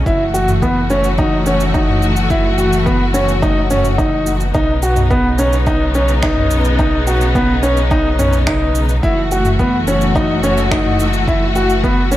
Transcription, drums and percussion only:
0.06 kick loud
0.06 shaker soft
0.35 shaker medium
0.48 mid tom medium
0.48 shaker soft
0.62 kick loud
0.62 shaker soft
0.90 shaker medium
1.04 shaker soft
1.18 kick loud
1.18 shaker soft
1.46 shaker medium
1.60 shaker soft
1.74 kick loud
1.74 shaker soft
1.89 mid tom medium
2.02 shaker medium
2.16 shaker soft
2.30 kick loud
2.30 shaker soft
2.58 shaker medium
2.73 shaker soft
2.86 kick loud
2.86 shaker soft
3.14 shaker medium
3.29 shaker soft
3.42 kick loud
3.42 shaker soft
3.70 mid tom medium
3.70 shaker medium
3.85 mid tom medium
3.85 shaker soft
3.98 kick loud
3.98 shaker soft
4.26 shaker medium
4.40 shaker soft
4.54 kick loud
4.54 shaker soft
4.83 shaker medium
4.96 mid tom medium
4.96 shaker soft
5.11 kick loud
5.11 shaker soft
5.38 shaker medium
5.53 shaker soft
5.67 kick loud
5.67 shaker soft
5.94 shaker medium
6.08 shaker soft
6.23 finger snap medium
6.23 kick loud
6.23 shaker soft
6.37 mid tom medium
6.51 shaker medium
6.65 shaker soft
6.79 kick loud
6.79 shaker soft
7.07 shaker medium
7.21 shaker soft
7.35 kick loud
7.35 shaker soft
7.63 shaker medium
7.77 shaker soft
7.91 kick loud
7.91 shaker soft
8.19 mid tom medium
8.19 shaker medium
8.33 shaker soft
8.47 finger snap medium
8.47 kick medium
8.47 shaker soft
8.75 shaker medium
8.89 shaker soft
9.03 kick loud
9.03 shaker soft
9.31 shaker medium
9.45 mid tom medium
9.45 shaker soft
9.59 kick loud
9.59 shaker soft
9.87 shaker medium
10.01 shaker soft
10.15 kick loud
10.15 shaker soft
10.44 shaker medium
10.58 shaker soft
10.71 finger snap medium
10.71 kick medium
10.71 shaker soft
10.85 mid tom medium
11.00 shaker medium
11.13 shaker soft
11.28 kick loud
11.28 shaker soft
11.56 shaker medium
11.70 shaker soft
11.84 kick medium
11.84 shaker soft
12.12 shaker medium

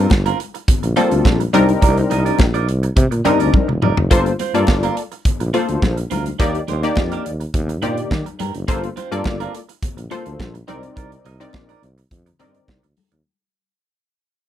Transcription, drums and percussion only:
0.10 kick loud
0.10 snare loud
0.10 high conga medium
0.26 closed hi-hat medium
0.40 closed hi-hat medium
0.55 closed hi-hat medium
0.68 kick loud
0.68 closed hi-hat loud
0.68 low conga medium
0.83 closed hi-hat medium
0.96 closed hi-hat medium
0.96 muted conga medium
1.11 closed hi-hat medium
1.25 kick loud
1.25 snare loud
1.25 high conga medium
1.40 closed hi-hat medium
1.54 closed hi-hat loud
1.54 high conga medium
1.69 closed hi-hat medium
1.82 kick loud
1.82 closed hi-hat loud
1.82 muted conga medium
1.98 closed hi-hat soft
2.11 closed hi-hat medium
2.11 muted conga medium
2.26 closed hi-hat medium
2.39 kick loud
2.39 snare loud
2.39 high conga medium
2.54 closed hi-hat soft
2.69 closed hi-hat medium
2.83 closed hi-hat medium
2.97 kick loud
2.97 closed hi-hat medium
2.97 muted conga soft
2.97 low conga medium
3.12 closed hi-hat medium
3.25 closed hi-hat medium
3.25 muted conga medium
3.25 low conga medium
3.40 closed hi-hat medium
3.54 kick loud
3.54 high tom medium
3.54 high conga medium
3.69 mid tom medium
3.82 mid tom loud
3.82 high conga medium
3.97 floor tom loud
4.11 kick loud
4.11 closed hi-hat loud
4.11 muted conga soft
4.26 closed hi-hat medium
4.39 closed hi-hat medium
4.39 muted conga soft
4.55 closed hi-hat medium
4.67 kick loud
4.67 snare loud
4.67 high conga medium
4.83 closed hi-hat medium
4.97 closed hi-hat medium
5.12 closed hi-hat medium
5.25 kick loud
5.25 closed hi-hat loud
5.25 low conga medium
5.40 closed hi-hat medium
5.54 closed hi-hat medium
5.54 muted conga medium
5.69 closed hi-hat medium
5.82 kick loud
5.82 snare loud
5.82 high conga medium
5.97 closed hi-hat medium
6.11 closed hi-hat medium
6.11 high conga medium
6.26 closed hi-hat medium
6.40 kick loud
6.40 closed hi-hat medium
6.40 muted conga medium
6.55 closed hi-hat soft
6.68 closed hi-hat medium
6.68 muted conga medium
6.83 closed hi-hat medium
6.96 kick loud
6.96 snare loud
6.96 high conga medium
7.12 closed hi-hat medium
7.26 closed hi-hat medium
7.41 closed hi-hat medium
7.54 kick loud
7.54 closed hi-hat medium
7.54 muted conga soft
7.54 low conga medium
7.69 closed hi-hat medium
7.82 closed hi-hat medium
7.82 muted conga medium
7.82 low conga medium
7.97 closed hi-hat medium
8.11 kick loud
8.11 snare loud
8.11 high conga medium
8.26 closed hi-hat medium
8.40 closed hi-hat medium
8.40 high conga medium
8.55 closed hi-hat medium
8.68 kick loud
8.68 closed hi-hat medium
8.68 muted conga medium
8.84 closed hi-hat medium
8.97 closed hi-hat medium
8.97 muted conga soft
9.12 closed hi-hat medium
9.24 kick loud
9.24 snare loud
9.24 high conga medium
9.40 closed hi-hat medium
9.55 closed hi-hat medium
9.69 closed hi-hat medium
9.83 kick loud
9.83 closed hi-hat loud
9.83 low conga medium
9.98 closed hi-hat medium
10.11 closed hi-hat medium
10.11 muted conga medium
10.26 closed hi-hat medium
10.40 kick loud
10.40 snare loud
10.40 high conga medium
10.55 closed hi-hat medium
10.68 closed hi-hat medium
10.68 high conga medium
10.83 closed hi-hat medium
10.97 kick loud
10.97 closed hi-hat medium
10.97 muted conga soft
11.12 closed hi-hat soft
11.25 closed hi-hat medium
11.25 muted conga soft
11.41 closed hi-hat medium
11.53 kick loud
11.53 snare loud
11.53 high conga medium
11.69 closed hi-hat medium
11.83 closed hi-hat medium
11.98 closed hi-hat medium
12.11 kick loud
12.11 closed hi-hat loud
12.11 low conga medium
12.26 closed hi-hat medium
12.40 closed hi-hat medium
12.40 muted conga medium
12.40 low conga medium
12.54 closed hi-hat medium
12.68 kick loud
12.68 snare loud
12.68 high conga medium
12.83 closed hi-hat soft
12.97 open hi-hat medium
12.97 high conga medium
13.12 closed hi-hat medium

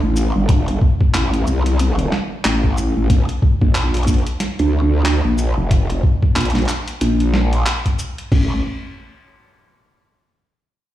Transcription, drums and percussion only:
0.16 shaker medium
0.49 kick loud
0.49 closed hi-hat medium
0.68 closed hi-hat soft
0.81 kick loud
1.01 kick loud
1.14 clap loud
1.14 closed hi-hat medium
1.34 closed hi-hat soft
1.47 shaker medium
1.66 closed hi-hat soft
1.79 closed hi-hat medium
1.99 closed hi-hat soft
2.12 snare medium
2.45 clap loud
2.45 closed hi-hat medium
2.64 kick medium
2.77 shaker medium
3.10 kick loud
3.10 closed hi-hat medium
3.29 closed hi-hat soft
3.42 kick loud
3.62 kick loud
3.75 clap loud
3.75 closed hi-hat medium
3.94 closed hi-hat soft
3.97 closed hi-hat soft
4.03 closed hi-hat soft
4.07 kick medium
4.07 closed hi-hat soft
4.07 shaker medium
4.14 closed hi-hat soft
4.18 closed hi-hat soft
4.27 closed hi-hat soft
4.40 snare soft
4.40 closed hi-hat medium
4.59 closed hi-hat soft
5.05 clap loud
5.05 closed hi-hat medium
5.38 shaker medium
5.71 kick loud
5.71 closed hi-hat medium
5.90 closed hi-hat soft
6.03 kick loud
6.23 kick loud
6.36 clap loud
6.36 closed hi-hat medium
6.41 closed hi-hat medium
6.45 closed hi-hat medium
6.50 closed hi-hat soft
6.55 snare soft
6.55 closed hi-hat soft
6.58 closed hi-hat soft
6.62 closed hi-hat soft
6.65 clap medium
6.65 closed hi-hat soft
6.65 shaker medium
6.88 closed hi-hat medium
7.01 closed hi-hat medium
7.20 closed hi-hat soft
7.34 snare medium
7.53 closed hi-hat soft
7.66 clap loud
7.66 closed hi-hat medium
7.86 kick medium
7.86 closed hi-hat soft
7.99 shaker medium
8.18 closed hi-hat soft
8.32 kick loud
8.32 crash medium

